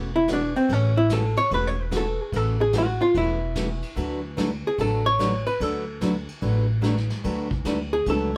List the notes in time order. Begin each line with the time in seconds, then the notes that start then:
Already playing: E1 C#4
0.16 E4
0.28 C#3 E3 A3 C#4 F#4, kick, snare, hi-hat pedal, ride
0.33 D4
0.56 C4, ride
0.69 A1 C#3 E3 A3 C#4 F#4, kick, ride
0.97 E4
1.10 C#3 E3 A3 C#4 F#4 A4, kick, snare, hi-hat pedal, ride
1.36 C#5, ride
1.51 E1 C#3 E3 A3 C#4 F#4 B4, kick, ride
1.67 C#5
1.82 B4
1.91 C#3 E3 A3 C#4 F#4, kick, snare, hi-hat pedal, ride
1.97 A4
2.22 G#4
2.32 A1 C#3 E3 A3 C#4 F#4 A4, kick, ride
2.61 G#4
2.73 C#3 E3 A3 C#4 F#4, kick, snare, hi-hat pedal, ride
2.78 F#4
3.02 F4
3.14 E1 C#3 E3 A3 C#4 E4 F#4, kick, ride
3.55 C#3 E3 A3 C#4 F#4, kick, snare, hi-hat pedal, ride
3.82 ride
3.96 D2 D3 F#3 A3 D4 F#4 B4, kick, ride
4.37 D3 F#3 A3 D4 F#4 B4, kick, snare, hi-hat pedal, ride
4.67 G#4
4.78 A1 D3 F#3 A3 D4 F#4 A4 B4, kick, ride
5.06 C#5
5.19 D3 F#3 A3 D4 F#4 B4, kick, snare, hi-hat pedal, ride
5.47 B4, ride
5.60 D2 D3 F#3 A3 D4 F#4 A4 B4, kick, ride
6.01 D3 F#3 A3 D4 F#4 B4, kick, snare, hi-hat pedal, ride
6.28 ride
6.42 A1 D3 F#3 A3 D4 F#4 B4, kick, ride
6.81 D3 F#3 A3 D4 F#4 B4, kick, snare, hi-hat pedal, ride
6.97 snare
7.10 snare, ride
7.24 D2 D3 F#3 A3 D4 F#4 B4, kick, ride
7.51 kick
7.65 D2 D3 F#3 A3 D4 F#4 B4, kick, snare, hi-hat pedal, ride
7.93 G#4
8.06 C#2 D3 F#3 A3 D4 F#4 A4 B4, kick, ride